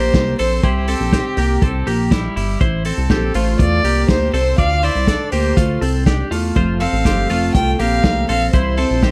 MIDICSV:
0, 0, Header, 1, 6, 480
1, 0, Start_track
1, 0, Key_signature, -1, "major"
1, 0, Tempo, 493827
1, 618, Time_signature, 4, 2, 24, 8
1, 8857, End_track
2, 0, Start_track
2, 0, Title_t, "Violin"
2, 0, Program_c, 0, 40
2, 0, Note_on_c, 0, 72, 100
2, 348, Note_off_c, 0, 72, 0
2, 379, Note_on_c, 0, 72, 83
2, 624, Note_on_c, 0, 67, 79
2, 639, Note_off_c, 0, 72, 0
2, 2061, Note_off_c, 0, 67, 0
2, 3019, Note_on_c, 0, 69, 75
2, 3258, Note_on_c, 0, 72, 74
2, 3273, Note_off_c, 0, 69, 0
2, 3493, Note_off_c, 0, 72, 0
2, 3499, Note_on_c, 0, 74, 93
2, 3945, Note_off_c, 0, 74, 0
2, 3981, Note_on_c, 0, 72, 84
2, 4203, Note_off_c, 0, 72, 0
2, 4221, Note_on_c, 0, 72, 89
2, 4443, Note_off_c, 0, 72, 0
2, 4461, Note_on_c, 0, 77, 96
2, 4707, Note_on_c, 0, 74, 93
2, 4722, Note_off_c, 0, 77, 0
2, 5174, Note_off_c, 0, 74, 0
2, 5179, Note_on_c, 0, 72, 77
2, 5625, Note_off_c, 0, 72, 0
2, 6613, Note_on_c, 0, 77, 89
2, 7296, Note_off_c, 0, 77, 0
2, 7339, Note_on_c, 0, 79, 106
2, 7497, Note_off_c, 0, 79, 0
2, 7497, Note_on_c, 0, 79, 66
2, 7575, Note_on_c, 0, 77, 98
2, 7590, Note_off_c, 0, 79, 0
2, 8056, Note_off_c, 0, 77, 0
2, 8064, Note_on_c, 0, 77, 89
2, 8284, Note_off_c, 0, 77, 0
2, 8300, Note_on_c, 0, 72, 81
2, 8857, Note_off_c, 0, 72, 0
2, 8857, End_track
3, 0, Start_track
3, 0, Title_t, "Clean electric guitar"
3, 0, Program_c, 1, 27
3, 0, Note_on_c, 1, 58, 53
3, 0, Note_on_c, 1, 67, 63
3, 353, Note_off_c, 1, 67, 0
3, 356, Note_off_c, 1, 58, 0
3, 381, Note_on_c, 1, 69, 66
3, 387, Note_on_c, 1, 60, 54
3, 614, Note_off_c, 1, 69, 0
3, 618, Note_on_c, 1, 72, 86
3, 623, Note_off_c, 1, 60, 0
3, 626, Note_on_c, 1, 64, 70
3, 854, Note_off_c, 1, 72, 0
3, 858, Note_on_c, 1, 69, 76
3, 862, Note_off_c, 1, 64, 0
3, 868, Note_on_c, 1, 60, 61
3, 1092, Note_off_c, 1, 60, 0
3, 1096, Note_on_c, 1, 67, 75
3, 1098, Note_off_c, 1, 69, 0
3, 1104, Note_on_c, 1, 60, 58
3, 1328, Note_off_c, 1, 67, 0
3, 1339, Note_on_c, 1, 67, 77
3, 1341, Note_off_c, 1, 60, 0
3, 1347, Note_on_c, 1, 58, 56
3, 1579, Note_off_c, 1, 67, 0
3, 1579, Note_on_c, 1, 69, 75
3, 1582, Note_off_c, 1, 58, 0
3, 1587, Note_on_c, 1, 60, 59
3, 1817, Note_on_c, 1, 67, 71
3, 1818, Note_off_c, 1, 69, 0
3, 1822, Note_off_c, 1, 60, 0
3, 1823, Note_on_c, 1, 58, 58
3, 2056, Note_on_c, 1, 64, 68
3, 2057, Note_off_c, 1, 67, 0
3, 2060, Note_off_c, 1, 58, 0
3, 2064, Note_on_c, 1, 55, 57
3, 2286, Note_off_c, 1, 64, 0
3, 2295, Note_off_c, 1, 55, 0
3, 2297, Note_on_c, 1, 64, 68
3, 2307, Note_on_c, 1, 55, 52
3, 2532, Note_off_c, 1, 64, 0
3, 2536, Note_on_c, 1, 72, 90
3, 2542, Note_off_c, 1, 55, 0
3, 2544, Note_on_c, 1, 64, 65
3, 2770, Note_off_c, 1, 72, 0
3, 2774, Note_on_c, 1, 69, 67
3, 2781, Note_off_c, 1, 64, 0
3, 2781, Note_on_c, 1, 60, 53
3, 3016, Note_off_c, 1, 60, 0
3, 3016, Note_off_c, 1, 69, 0
3, 3019, Note_on_c, 1, 67, 75
3, 3027, Note_on_c, 1, 60, 57
3, 3254, Note_off_c, 1, 67, 0
3, 3258, Note_on_c, 1, 65, 84
3, 3263, Note_off_c, 1, 60, 0
3, 3265, Note_on_c, 1, 57, 69
3, 3709, Note_off_c, 1, 65, 0
3, 3713, Note_off_c, 1, 57, 0
3, 3738, Note_on_c, 1, 67, 63
3, 3745, Note_on_c, 1, 58, 51
3, 4189, Note_off_c, 1, 67, 0
3, 4193, Note_off_c, 1, 58, 0
3, 4215, Note_on_c, 1, 69, 66
3, 4224, Note_on_c, 1, 60, 55
3, 4454, Note_off_c, 1, 69, 0
3, 4458, Note_on_c, 1, 74, 84
3, 4460, Note_off_c, 1, 60, 0
3, 4464, Note_on_c, 1, 65, 68
3, 4692, Note_off_c, 1, 74, 0
3, 4696, Note_on_c, 1, 72, 72
3, 4699, Note_off_c, 1, 65, 0
3, 4703, Note_on_c, 1, 64, 62
3, 4934, Note_on_c, 1, 69, 77
3, 4937, Note_off_c, 1, 72, 0
3, 4939, Note_off_c, 1, 64, 0
3, 4942, Note_on_c, 1, 62, 55
3, 5170, Note_off_c, 1, 69, 0
3, 5174, Note_on_c, 1, 67, 75
3, 5180, Note_off_c, 1, 62, 0
3, 5182, Note_on_c, 1, 58, 60
3, 5413, Note_on_c, 1, 65, 72
3, 5416, Note_off_c, 1, 58, 0
3, 5416, Note_off_c, 1, 67, 0
3, 5420, Note_on_c, 1, 57, 55
3, 5652, Note_on_c, 1, 69, 65
3, 5655, Note_off_c, 1, 65, 0
3, 5659, Note_off_c, 1, 57, 0
3, 5663, Note_on_c, 1, 60, 55
3, 5891, Note_off_c, 1, 69, 0
3, 5895, Note_on_c, 1, 67, 67
3, 5900, Note_off_c, 1, 60, 0
3, 5902, Note_on_c, 1, 62, 55
3, 6131, Note_off_c, 1, 62, 0
3, 6135, Note_on_c, 1, 65, 65
3, 6136, Note_off_c, 1, 67, 0
3, 6142, Note_on_c, 1, 57, 49
3, 6376, Note_off_c, 1, 65, 0
3, 6380, Note_off_c, 1, 57, 0
3, 6380, Note_on_c, 1, 72, 89
3, 6387, Note_on_c, 1, 65, 65
3, 6614, Note_off_c, 1, 72, 0
3, 6618, Note_on_c, 1, 69, 69
3, 6622, Note_off_c, 1, 65, 0
3, 6625, Note_on_c, 1, 60, 53
3, 6854, Note_off_c, 1, 60, 0
3, 6858, Note_off_c, 1, 69, 0
3, 6858, Note_on_c, 1, 67, 70
3, 6866, Note_on_c, 1, 60, 54
3, 7092, Note_off_c, 1, 67, 0
3, 7096, Note_on_c, 1, 65, 77
3, 7101, Note_off_c, 1, 60, 0
3, 7104, Note_on_c, 1, 57, 60
3, 7548, Note_off_c, 1, 65, 0
3, 7552, Note_off_c, 1, 57, 0
3, 7575, Note_on_c, 1, 67, 67
3, 7582, Note_on_c, 1, 58, 54
3, 8027, Note_off_c, 1, 67, 0
3, 8031, Note_off_c, 1, 58, 0
3, 8058, Note_on_c, 1, 69, 69
3, 8066, Note_on_c, 1, 60, 52
3, 8293, Note_off_c, 1, 69, 0
3, 8297, Note_on_c, 1, 72, 82
3, 8301, Note_off_c, 1, 60, 0
3, 8303, Note_on_c, 1, 64, 60
3, 8528, Note_off_c, 1, 72, 0
3, 8532, Note_on_c, 1, 69, 77
3, 8538, Note_on_c, 1, 60, 59
3, 8540, Note_off_c, 1, 64, 0
3, 8774, Note_off_c, 1, 69, 0
3, 8775, Note_off_c, 1, 60, 0
3, 8778, Note_on_c, 1, 67, 76
3, 8786, Note_on_c, 1, 60, 61
3, 8857, Note_off_c, 1, 60, 0
3, 8857, Note_off_c, 1, 67, 0
3, 8857, End_track
4, 0, Start_track
4, 0, Title_t, "Steel-string acoustic guitar"
4, 0, Program_c, 2, 25
4, 6367, Note_on_c, 2, 53, 75
4, 6370, Note_on_c, 2, 57, 89
4, 6372, Note_on_c, 2, 60, 80
4, 6376, Note_on_c, 2, 69, 88
4, 6378, Note_on_c, 2, 72, 84
4, 6597, Note_off_c, 2, 72, 0
4, 6608, Note_on_c, 2, 72, 41
4, 6611, Note_off_c, 2, 69, 0
4, 6612, Note_off_c, 2, 53, 0
4, 6614, Note_off_c, 2, 57, 0
4, 6615, Note_off_c, 2, 60, 0
4, 6622, Note_on_c, 2, 69, 44
4, 6631, Note_on_c, 2, 60, 40
4, 6849, Note_off_c, 2, 60, 0
4, 6850, Note_off_c, 2, 69, 0
4, 6852, Note_on_c, 2, 53, 64
4, 6853, Note_off_c, 2, 72, 0
4, 6856, Note_on_c, 2, 57, 76
4, 6860, Note_on_c, 2, 60, 71
4, 6862, Note_on_c, 2, 69, 84
4, 6867, Note_on_c, 2, 72, 77
4, 7074, Note_off_c, 2, 72, 0
4, 7086, Note_off_c, 2, 69, 0
4, 7086, Note_on_c, 2, 72, 50
4, 7095, Note_off_c, 2, 53, 0
4, 7096, Note_off_c, 2, 57, 0
4, 7097, Note_off_c, 2, 60, 0
4, 7098, Note_on_c, 2, 69, 52
4, 7108, Note_on_c, 2, 60, 47
4, 7326, Note_off_c, 2, 60, 0
4, 7331, Note_off_c, 2, 72, 0
4, 7332, Note_on_c, 2, 57, 49
4, 7337, Note_off_c, 2, 69, 0
4, 7338, Note_on_c, 2, 60, 54
4, 7348, Note_on_c, 2, 69, 56
4, 7353, Note_on_c, 2, 72, 57
4, 7555, Note_off_c, 2, 72, 0
4, 7566, Note_on_c, 2, 72, 53
4, 7570, Note_off_c, 2, 69, 0
4, 7575, Note_off_c, 2, 57, 0
4, 7577, Note_off_c, 2, 60, 0
4, 7582, Note_on_c, 2, 69, 45
4, 7592, Note_on_c, 2, 60, 42
4, 7811, Note_off_c, 2, 60, 0
4, 7811, Note_off_c, 2, 72, 0
4, 7814, Note_on_c, 2, 53, 62
4, 7816, Note_off_c, 2, 69, 0
4, 7818, Note_on_c, 2, 57, 68
4, 7822, Note_on_c, 2, 60, 71
4, 7828, Note_on_c, 2, 69, 66
4, 7831, Note_on_c, 2, 72, 66
4, 8040, Note_off_c, 2, 72, 0
4, 8052, Note_on_c, 2, 72, 49
4, 8054, Note_off_c, 2, 69, 0
4, 8055, Note_off_c, 2, 53, 0
4, 8057, Note_off_c, 2, 57, 0
4, 8059, Note_off_c, 2, 60, 0
4, 8065, Note_on_c, 2, 69, 46
4, 8072, Note_on_c, 2, 60, 44
4, 8292, Note_off_c, 2, 60, 0
4, 8294, Note_off_c, 2, 72, 0
4, 8295, Note_on_c, 2, 48, 67
4, 8299, Note_on_c, 2, 52, 65
4, 8301, Note_off_c, 2, 69, 0
4, 8303, Note_on_c, 2, 55, 70
4, 8304, Note_on_c, 2, 60, 75
4, 8308, Note_on_c, 2, 64, 69
4, 8311, Note_on_c, 2, 72, 82
4, 8517, Note_off_c, 2, 72, 0
4, 8529, Note_on_c, 2, 72, 52
4, 8530, Note_off_c, 2, 64, 0
4, 8535, Note_off_c, 2, 60, 0
4, 8536, Note_off_c, 2, 48, 0
4, 8537, Note_off_c, 2, 52, 0
4, 8540, Note_off_c, 2, 55, 0
4, 8541, Note_on_c, 2, 64, 43
4, 8547, Note_on_c, 2, 60, 38
4, 8553, Note_on_c, 2, 55, 34
4, 8768, Note_off_c, 2, 55, 0
4, 8771, Note_off_c, 2, 60, 0
4, 8772, Note_off_c, 2, 72, 0
4, 8773, Note_on_c, 2, 48, 75
4, 8775, Note_on_c, 2, 52, 75
4, 8777, Note_off_c, 2, 64, 0
4, 8779, Note_on_c, 2, 55, 76
4, 8783, Note_on_c, 2, 60, 77
4, 8788, Note_on_c, 2, 64, 77
4, 8791, Note_on_c, 2, 72, 83
4, 8857, Note_off_c, 2, 48, 0
4, 8857, Note_off_c, 2, 52, 0
4, 8857, Note_off_c, 2, 55, 0
4, 8857, Note_off_c, 2, 60, 0
4, 8857, Note_off_c, 2, 64, 0
4, 8857, Note_off_c, 2, 72, 0
4, 8857, End_track
5, 0, Start_track
5, 0, Title_t, "Analog synth bass"
5, 0, Program_c, 3, 38
5, 0, Note_on_c, 3, 34, 80
5, 105, Note_off_c, 3, 34, 0
5, 137, Note_on_c, 3, 36, 88
5, 341, Note_off_c, 3, 36, 0
5, 384, Note_on_c, 3, 34, 93
5, 585, Note_off_c, 3, 34, 0
5, 619, Note_on_c, 3, 36, 87
5, 924, Note_off_c, 3, 36, 0
5, 976, Note_on_c, 3, 34, 77
5, 1181, Note_off_c, 3, 34, 0
5, 1334, Note_on_c, 3, 36, 98
5, 1540, Note_off_c, 3, 36, 0
5, 1576, Note_on_c, 3, 36, 89
5, 1781, Note_off_c, 3, 36, 0
5, 1815, Note_on_c, 3, 34, 97
5, 2224, Note_off_c, 3, 34, 0
5, 2293, Note_on_c, 3, 31, 88
5, 2499, Note_off_c, 3, 31, 0
5, 2536, Note_on_c, 3, 33, 100
5, 2843, Note_off_c, 3, 33, 0
5, 2893, Note_on_c, 3, 36, 78
5, 2997, Note_off_c, 3, 36, 0
5, 3014, Note_on_c, 3, 34, 87
5, 3220, Note_off_c, 3, 34, 0
5, 3251, Note_on_c, 3, 33, 92
5, 3458, Note_off_c, 3, 33, 0
5, 3494, Note_on_c, 3, 40, 92
5, 3699, Note_off_c, 3, 40, 0
5, 3733, Note_on_c, 3, 36, 75
5, 3939, Note_off_c, 3, 36, 0
5, 3971, Note_on_c, 3, 38, 94
5, 4178, Note_off_c, 3, 38, 0
5, 4213, Note_on_c, 3, 36, 88
5, 4419, Note_off_c, 3, 36, 0
5, 4454, Note_on_c, 3, 38, 98
5, 4762, Note_off_c, 3, 38, 0
5, 4816, Note_on_c, 3, 36, 79
5, 5021, Note_off_c, 3, 36, 0
5, 5175, Note_on_c, 3, 38, 83
5, 5380, Note_off_c, 3, 38, 0
5, 5416, Note_on_c, 3, 38, 86
5, 5621, Note_off_c, 3, 38, 0
5, 5655, Note_on_c, 3, 36, 90
5, 6064, Note_off_c, 3, 36, 0
5, 6133, Note_on_c, 3, 40, 90
5, 6339, Note_off_c, 3, 40, 0
5, 6379, Note_on_c, 3, 29, 101
5, 6684, Note_off_c, 3, 29, 0
5, 6735, Note_on_c, 3, 33, 78
5, 6838, Note_off_c, 3, 33, 0
5, 6857, Note_on_c, 3, 31, 92
5, 7061, Note_off_c, 3, 31, 0
5, 7095, Note_on_c, 3, 29, 83
5, 7300, Note_off_c, 3, 29, 0
5, 7334, Note_on_c, 3, 36, 94
5, 7539, Note_off_c, 3, 36, 0
5, 7580, Note_on_c, 3, 34, 78
5, 7783, Note_off_c, 3, 34, 0
5, 7812, Note_on_c, 3, 36, 90
5, 8018, Note_off_c, 3, 36, 0
5, 8059, Note_on_c, 3, 34, 86
5, 8262, Note_off_c, 3, 34, 0
5, 8298, Note_on_c, 3, 36, 89
5, 8603, Note_off_c, 3, 36, 0
5, 8660, Note_on_c, 3, 34, 75
5, 8857, Note_off_c, 3, 34, 0
5, 8857, End_track
6, 0, Start_track
6, 0, Title_t, "Drums"
6, 135, Note_on_c, 9, 36, 97
6, 140, Note_on_c, 9, 38, 105
6, 140, Note_on_c, 9, 42, 66
6, 232, Note_off_c, 9, 36, 0
6, 237, Note_off_c, 9, 38, 0
6, 237, Note_off_c, 9, 42, 0
6, 378, Note_on_c, 9, 46, 63
6, 475, Note_off_c, 9, 46, 0
6, 616, Note_on_c, 9, 42, 57
6, 617, Note_on_c, 9, 36, 93
6, 713, Note_off_c, 9, 42, 0
6, 714, Note_off_c, 9, 36, 0
6, 852, Note_on_c, 9, 46, 67
6, 949, Note_off_c, 9, 46, 0
6, 1095, Note_on_c, 9, 36, 88
6, 1097, Note_on_c, 9, 38, 92
6, 1101, Note_on_c, 9, 42, 64
6, 1192, Note_off_c, 9, 36, 0
6, 1194, Note_off_c, 9, 38, 0
6, 1198, Note_off_c, 9, 42, 0
6, 1331, Note_on_c, 9, 46, 65
6, 1428, Note_off_c, 9, 46, 0
6, 1575, Note_on_c, 9, 36, 105
6, 1577, Note_on_c, 9, 42, 75
6, 1672, Note_off_c, 9, 36, 0
6, 1674, Note_off_c, 9, 42, 0
6, 1817, Note_on_c, 9, 46, 65
6, 1915, Note_off_c, 9, 46, 0
6, 2054, Note_on_c, 9, 36, 97
6, 2059, Note_on_c, 9, 38, 106
6, 2059, Note_on_c, 9, 42, 58
6, 2151, Note_off_c, 9, 36, 0
6, 2156, Note_off_c, 9, 38, 0
6, 2156, Note_off_c, 9, 42, 0
6, 2303, Note_on_c, 9, 46, 62
6, 2400, Note_off_c, 9, 46, 0
6, 2535, Note_on_c, 9, 36, 95
6, 2536, Note_on_c, 9, 42, 61
6, 2632, Note_off_c, 9, 36, 0
6, 2633, Note_off_c, 9, 42, 0
6, 2769, Note_on_c, 9, 46, 66
6, 2866, Note_off_c, 9, 46, 0
6, 3013, Note_on_c, 9, 36, 97
6, 3014, Note_on_c, 9, 38, 89
6, 3017, Note_on_c, 9, 42, 60
6, 3110, Note_off_c, 9, 36, 0
6, 3111, Note_off_c, 9, 38, 0
6, 3115, Note_off_c, 9, 42, 0
6, 3250, Note_on_c, 9, 46, 65
6, 3347, Note_off_c, 9, 46, 0
6, 3493, Note_on_c, 9, 36, 112
6, 3496, Note_on_c, 9, 42, 77
6, 3590, Note_off_c, 9, 36, 0
6, 3593, Note_off_c, 9, 42, 0
6, 3738, Note_on_c, 9, 46, 66
6, 3835, Note_off_c, 9, 46, 0
6, 3972, Note_on_c, 9, 36, 96
6, 3975, Note_on_c, 9, 38, 113
6, 3975, Note_on_c, 9, 42, 65
6, 4069, Note_off_c, 9, 36, 0
6, 4072, Note_off_c, 9, 38, 0
6, 4072, Note_off_c, 9, 42, 0
6, 4218, Note_on_c, 9, 46, 64
6, 4315, Note_off_c, 9, 46, 0
6, 4453, Note_on_c, 9, 42, 60
6, 4454, Note_on_c, 9, 36, 93
6, 4551, Note_off_c, 9, 36, 0
6, 4551, Note_off_c, 9, 42, 0
6, 4688, Note_on_c, 9, 46, 70
6, 4785, Note_off_c, 9, 46, 0
6, 4933, Note_on_c, 9, 36, 91
6, 4934, Note_on_c, 9, 38, 86
6, 4938, Note_on_c, 9, 42, 61
6, 5030, Note_off_c, 9, 36, 0
6, 5032, Note_off_c, 9, 38, 0
6, 5036, Note_off_c, 9, 42, 0
6, 5170, Note_on_c, 9, 46, 62
6, 5267, Note_off_c, 9, 46, 0
6, 5415, Note_on_c, 9, 36, 99
6, 5417, Note_on_c, 9, 42, 77
6, 5512, Note_off_c, 9, 36, 0
6, 5514, Note_off_c, 9, 42, 0
6, 5658, Note_on_c, 9, 46, 62
6, 5755, Note_off_c, 9, 46, 0
6, 5894, Note_on_c, 9, 36, 94
6, 5898, Note_on_c, 9, 38, 107
6, 5898, Note_on_c, 9, 42, 59
6, 5991, Note_off_c, 9, 36, 0
6, 5995, Note_off_c, 9, 38, 0
6, 5995, Note_off_c, 9, 42, 0
6, 6142, Note_on_c, 9, 46, 69
6, 6239, Note_off_c, 9, 46, 0
6, 6377, Note_on_c, 9, 36, 91
6, 6377, Note_on_c, 9, 42, 61
6, 6474, Note_off_c, 9, 36, 0
6, 6474, Note_off_c, 9, 42, 0
6, 6611, Note_on_c, 9, 46, 64
6, 6709, Note_off_c, 9, 46, 0
6, 6855, Note_on_c, 9, 36, 92
6, 6856, Note_on_c, 9, 38, 83
6, 6860, Note_on_c, 9, 42, 60
6, 6952, Note_off_c, 9, 36, 0
6, 6953, Note_off_c, 9, 38, 0
6, 6957, Note_off_c, 9, 42, 0
6, 7091, Note_on_c, 9, 46, 66
6, 7188, Note_off_c, 9, 46, 0
6, 7335, Note_on_c, 9, 36, 106
6, 7336, Note_on_c, 9, 42, 73
6, 7432, Note_off_c, 9, 36, 0
6, 7433, Note_off_c, 9, 42, 0
6, 7577, Note_on_c, 9, 46, 67
6, 7674, Note_off_c, 9, 46, 0
6, 7813, Note_on_c, 9, 36, 96
6, 7816, Note_on_c, 9, 38, 108
6, 7816, Note_on_c, 9, 42, 62
6, 7910, Note_off_c, 9, 36, 0
6, 7913, Note_off_c, 9, 38, 0
6, 7913, Note_off_c, 9, 42, 0
6, 8057, Note_on_c, 9, 46, 65
6, 8154, Note_off_c, 9, 46, 0
6, 8293, Note_on_c, 9, 42, 63
6, 8296, Note_on_c, 9, 36, 94
6, 8390, Note_off_c, 9, 42, 0
6, 8394, Note_off_c, 9, 36, 0
6, 8529, Note_on_c, 9, 46, 72
6, 8626, Note_off_c, 9, 46, 0
6, 8774, Note_on_c, 9, 36, 91
6, 8776, Note_on_c, 9, 38, 96
6, 8779, Note_on_c, 9, 42, 65
6, 8857, Note_off_c, 9, 36, 0
6, 8857, Note_off_c, 9, 38, 0
6, 8857, Note_off_c, 9, 42, 0
6, 8857, End_track
0, 0, End_of_file